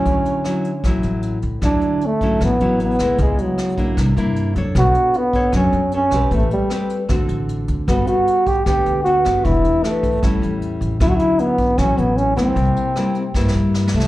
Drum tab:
HH |x--x--x--x--x--x--x--x--|x--x--x--x--x--x--x--x--|x--x--x--x--x--x--x--x--|x--x--x--x--x--x--x--x--|
SD |------r-----r-----------|r-----------r--------r--|------r-----r-----------|r-----------r--------r--|
BD |o-----------o-----------|o--------o--o-----------|o--------o--o-----------|o--------o--o-----------|

HH |x--x--x--x--x--x--x--x--|x--x--x--x--x--x--x--x--|x--x--x--x--x--x--x--x--|x--x--x--x--x--x--x--x--|
SD |------r-----r-----------|r-----------r--------r--|------r-----r-----------|r-----------r--------r--|
BD |o-----------o-----------|o--------o--o-----------|o--------o--o-----------|o--------o--o-----------|

HH |x--x--x--x--------------|
SD |------r-----o-o---o-o-o-|
BD |o-----------o-----------|